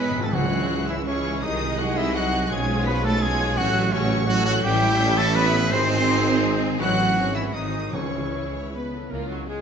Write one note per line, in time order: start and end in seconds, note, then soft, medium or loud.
0.00 0.14 G#2 medium
0.00 0.35 G#2 medium
0.00 0.10 G#2 medium
0.00 0.42 G#3 medium
0.00 0.22 B3 loud
0.00 0.12 G#4 loud
0.00 0.23 G#4 medium
0.00 0.25 B4 loud
0.00 0.15 D#5 loud
0.00 0.79 G#5 medium
0.00 0.22 B6 loud
0.05 0.35 D#3 medium
0.11 0.22 G#1 medium
0.11 0.17 G#2 medium
0.11 0.33 C3 medium
0.11 0.22 C4 medium
0.11 0.35 D#4 medium
0.15 0.23 G#1 medium
0.15 0.26 G#2 loud
0.23 0.27 A3 medium
0.23 1.24 G#4 medium
0.23 0.34 A4 medium
0.23 0.28 A5 medium
0.23 0.33 A6 medium
0.33 1.44 C#2 medium
0.33 1.40 C#2 medium
0.33 0.84 C#3 loud
0.33 1.45 C#3 medium
0.33 1.03 E3 medium
0.33 0.87 F#3 loud
0.33 1.03 G#3 medium
0.33 1.03 C#4 medium
0.33 1.03 E4 medium
0.33 0.88 F#4 loud
0.33 1.02 G#4 loud
0.33 1.03 C#5 medium
0.33 0.88 F#5 loud
0.33 0.88 F#6 loud
0.43 1.33 G#3 medium
0.52 1.45 E4 medium
0.61 1.15 C#5 medium
0.80 0.97 G#5 medium
0.88 1.06 E3 medium
0.88 0.97 E4 medium
0.88 0.95 E5 medium
0.88 1.45 C#6 medium
0.88 1.07 E6 loud
0.98 1.87 G#5 medium
1.06 1.43 C#3 medium
1.06 1.43 E3 medium
1.06 1.43 G#3 medium
1.06 1.42 C#4 medium
1.06 1.45 C#4 loud
1.06 1.43 E4 medium
1.06 1.42 G#4 medium
1.06 1.42 C#5 medium
1.06 1.45 C#5 medium
1.06 1.45 E5 medium
1.06 1.42 C#6 loud
1.16 1.45 C#5 medium
1.25 1.79 G#4 medium
1.35 3.59 G#3 medium
1.42 2.51 C2 loud
1.42 2.51 C2 medium
1.42 2.53 C3 medium
1.42 1.78 D#3 loud
1.42 2.15 G#3 medium
1.42 2.49 G#3 medium
1.42 1.81 D#4 medium
1.42 2.51 D#4 loud
1.42 2.51 D#4 medium
1.42 2.49 G#4 loud
1.42 2.51 D#5 loud
1.42 1.81 D#5 medium
1.42 1.78 D#6 loud
1.53 2.42 C4 medium
1.61 2.32 D#4 medium
1.71 2.14 D#5 medium
1.78 1.86 F#3 loud
1.78 1.98 F#4 medium
1.78 2.23 G#4 medium
1.78 1.99 F#5 loud
1.78 1.97 F#6 loud
1.89 2.05 G#5 medium
1.97 2.15 E3 loud
1.97 2.14 E4 loud
1.97 2.16 E5 loud
1.97 2.52 D#6 medium
1.97 2.15 E6 loud
2.06 2.94 G#5 medium
2.15 2.51 F#3 loud
2.15 2.50 F#4 loud
2.15 2.53 D#5 medium
2.15 2.51 F#5 loud
2.15 2.50 F#6 loud
2.24 3.38 G#4 medium
2.34 2.53 D#4 medium
2.43 2.53 C4 medium
2.51 3.55 B1 loud
2.51 3.59 B1 loud
2.51 3.59 B2 medium
2.51 3.21 F3 loud
2.51 2.87 G#3 loud
2.51 3.21 G#3 loud
2.51 3.21 C#4 medium
2.51 3.21 C#4 loud
2.51 3.21 F4 loud
2.51 2.86 G#4 loud
2.51 3.21 C#5 loud
2.51 2.86 G#5 medium
2.51 2.86 G#6 loud
2.61 3.46 B3 medium
2.69 3.59 F4 medium
2.78 3.29 C#5 medium
2.86 3.04 B3 loud
2.86 3.06 B4 loud
2.86 3.21 F5 medium
2.86 2.93 B5 loud
2.86 3.04 B6 loud
2.95 3.12 G#5 medium
3.04 3.21 A3 loud
3.04 3.23 A4 loud
3.04 3.21 A5 loud
3.04 4.09 C#6 medium
3.04 3.22 A6 loud
3.13 3.59 G#5 medium
3.21 3.57 F3 loud
3.21 3.58 G#3 loud
3.21 3.57 G#3 medium
3.21 3.57 C#4 medium
3.21 3.57 F4 loud
3.21 3.59 G#4 loud
3.21 3.57 C#5 loud
3.21 3.59 F5 medium
3.21 3.59 G#5 loud
3.21 3.58 G#6 loud
3.30 3.82 C#5 medium
3.39 3.59 G#4 medium
3.48 3.58 B3 medium
3.57 4.63 A1 loud
3.57 4.62 A2 loud
3.57 3.93 F#3 loud
3.57 3.92 F#3 loud
3.57 3.92 A3 loud
3.57 3.92 C#4 loud
3.57 3.94 F#4 loud
3.57 3.91 F#4 loud
3.57 3.91 C#5 loud
3.57 3.94 F#5 loud
3.57 3.92 F#6 loud
3.66 4.53 A3 medium
3.74 4.65 F#4 medium
3.84 4.36 C#5 medium
3.92 4.28 C#3 loud
3.92 4.28 F#3 loud
3.92 4.27 A3 medium
3.92 4.27 C#4 loud
3.92 4.28 C#4 medium
3.92 4.27 C#4 loud
3.92 4.27 F#4 loud
3.92 4.27 C#5 loud
3.92 4.29 C#5 loud
3.92 4.26 F#5 medium
3.92 4.27 C#6 loud
4.02 4.18 A5 medium
4.10 5.15 C#6 medium
4.19 5.06 A5 medium
4.27 4.34 F#3 loud
4.27 4.63 F#3 loud
4.27 4.63 A3 loud
4.27 4.63 C#4 loud
4.27 4.63 C#4 medium
4.27 4.45 F#4 loud
4.27 4.63 F#4 loud
4.27 4.63 C#5 loud
4.27 4.45 F#5 loud
4.27 4.65 F#5 loud
4.27 4.45 F#6 loud
4.37 4.89 C#5 medium
4.45 4.63 F#3 loud
4.45 4.54 F#4 loud
4.45 5.52 A4 medium
4.45 4.51 F#5 loud
4.45 4.63 F#6 loud
4.54 5.72 A3 medium
4.63 5.73 A1 loud
4.63 5.69 A1 loud
4.63 5.72 A2 loud
4.63 5.72 E3 loud
4.63 5.17 G3 loud
4.63 5.69 A3 loud
4.63 5.69 C#4 loud
4.63 5.70 C#4 loud
4.63 5.71 E4 loud
4.63 5.19 G4 loud
4.63 5.69 E5 loud
4.63 5.16 G5 loud
4.63 5.17 G6 loud
4.73 5.60 E3 medium
4.81 5.73 E4 medium
4.99 5.33 E5 medium
5.07 5.24 A5 medium
5.16 5.24 A3 loud
5.16 5.37 A4 loud
5.16 5.35 A5 loud
5.16 5.72 C#6 medium
5.16 5.36 A6 loud
5.25 5.72 A5 medium
5.34 5.70 B3 loud
5.34 5.73 B4 loud
5.34 5.72 E5 medium
5.34 5.73 B5 loud
5.34 5.70 B6 loud
5.53 5.73 A4 medium
5.61 5.72 E3 medium
5.71 6.80 G#1 loud
5.71 6.63 G#1 loud
5.71 6.81 G#2 loud
5.71 6.78 D#3 loud
5.71 6.60 C4 loud
5.71 6.80 C4 loud
5.71 6.78 D#4 loud
5.71 6.78 G#4 loud
5.71 6.62 C5 loud
5.71 6.80 C5 loud
5.71 6.52 C6 loud
5.71 6.62 C7 loud
5.80 6.69 D#3 medium
5.89 6.81 C4 medium
5.98 6.51 D#5 medium
6.07 6.42 C5 medium
6.17 6.33 G#5 medium
6.25 6.81 D#6 medium
6.34 6.81 G#5 medium
6.43 6.81 C5 medium
6.52 6.81 D#5 medium
6.61 6.81 G#4 medium
6.71 6.81 D#3 medium
6.79 7.16 A1 loud
6.79 7.18 A1 loud
6.79 7.18 A2 medium
6.79 7.15 E3 medium
6.79 7.31 F#3 loud
6.79 7.15 C#4 medium
6.79 7.15 C#4 loud
6.79 7.16 E4 loud
6.79 7.31 F#4 loud
6.79 7.16 C#5 loud
6.79 7.37 F#5 loud
6.79 7.32 F#6 loud
6.89 7.18 E3 medium
6.98 7.34 C#4 medium
7.08 7.56 C#5 medium
7.16 7.53 G#1 medium
7.16 7.54 G#1 medium
7.16 7.53 G#2 medium
7.16 7.53 E3 medium
7.16 7.54 E3 medium
7.16 7.53 C#4 medium
7.16 7.54 C#4 medium
7.16 7.52 G#4 medium
7.16 7.54 C#5 medium
7.26 8.02 G#3 medium
7.35 7.54 E3 medium
7.35 7.56 C#4 medium
7.35 7.54 E4 medium
7.35 7.55 E5 medium
7.35 7.42 E6 loud
7.45 7.82 G#4 medium
7.53 7.93 G#1 medium
7.53 7.96 G#1 medium
7.53 7.95 G#2 medium
7.53 7.93 D#3 medium
7.53 7.94 F#3 medium
7.53 7.93 C4 medium
7.53 7.93 D#4 medium
7.53 7.94 D#4 medium
7.53 7.91 G#4 medium
7.53 7.93 C5 medium
7.53 7.93 D#5 medium
7.53 7.92 D#6 medium
7.64 7.95 D#3 medium
7.74 7.95 C4 soft
7.83 8.22 G#4 medium
7.92 8.92 C#2 medium
7.92 8.93 C#2 medium
7.92 8.49 C#3 loud
7.92 8.71 C#3 medium
7.92 9.11 C#3 medium
7.92 8.56 E3 medium
7.92 8.73 E3 medium
7.92 8.56 C#4 medium
7.92 8.71 C#4 medium
7.92 8.74 E4 medium
7.92 8.28 G#4 medium
7.92 8.29 C#5 medium
7.92 8.71 C#5 medium
7.92 8.73 C#6 medium
8.04 9.02 G#3 soft
8.14 9.29 C#4 soft
8.23 8.82 G#4 soft
8.32 8.51 G#4 medium
8.32 8.72 C#5 medium
8.44 8.62 E5 soft
8.53 8.73 C#5 medium
8.53 9.61 G#5 soft
8.63 9.12 E5 soft
8.73 9.09 B3 medium
8.73 8.92 B4 medium
8.73 9.08 B4 medium
8.73 9.12 B4 medium
8.73 9.61 C#5 soft
8.83 9.61 G#4 soft
8.92 9.13 E4 soft
8.92 9.11 A4 medium
9.03 9.61 G#3 soft
9.09 9.41 C#2 medium
9.09 9.41 C#3 medium
9.09 9.61 C#3 medium
9.09 9.19 A#3 medium
9.09 9.29 A#3 medium
9.09 9.43 F4 medium
9.09 9.29 A#4 medium
9.28 9.47 F#3 medium
9.28 9.61 C#4 soft
9.28 9.46 F#4 medium
9.28 9.36 F#4 medium
9.46 9.61 G#3 medium
9.46 9.61 F4 medium
9.46 9.61 G#4 medium